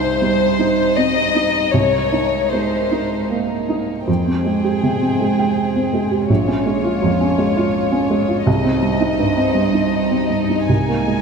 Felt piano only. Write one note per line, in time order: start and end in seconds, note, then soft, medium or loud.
0.00 1.70 C2 medium
0.00 0.44 D#4 soft
0.22 0.82 G3 soft
0.59 1.20 D#4 soft
0.97 1.59 C4 soft
1.35 1.74 D#4 soft
1.74 4.03 C2 medium
2.12 2.76 D#4 soft
2.53 3.15 G#3 soft
2.91 3.53 D#4 soft
3.30 3.92 A#3 soft
3.69 4.07 D#4 soft
4.07 6.25 F2 soft
4.26 4.57 C4 soft
4.45 4.75 G#3 soft
4.64 4.94 G4 soft
4.83 5.13 C3 soft
5.02 5.31 C4 soft
5.20 5.49 G#3 soft
5.39 5.97 G5 soft
5.76 6.04 C4 soft
5.93 6.22 G#3 soft
6.11 6.29 G4 soft
6.29 8.43 A#1 soft
6.48 6.77 C#4 soft
6.66 6.95 G#3 soft
6.84 7.13 F4 soft
7.02 7.31 F2 soft
7.21 7.50 C#4 soft
7.38 7.67 G#3 soft
7.57 8.15 F4 soft
7.92 8.21 C#4 soft
8.10 8.39 G#3 soft
8.29 8.47 F4 soft
8.46 10.64 C2 medium
8.64 8.93 C4 soft
8.82 9.11 G3 soft
9.01 9.30 D#4 soft
9.19 9.48 G2 soft
9.36 9.66 C4 soft
9.55 9.84 G3 soft
9.73 10.33 D#4 soft
10.11 10.41 C4 soft
10.30 10.60 G3 soft
10.50 10.69 D#4 soft
10.69 11.22 C2 soft
10.88 11.19 A#3 soft
11.07 11.22 G#3 soft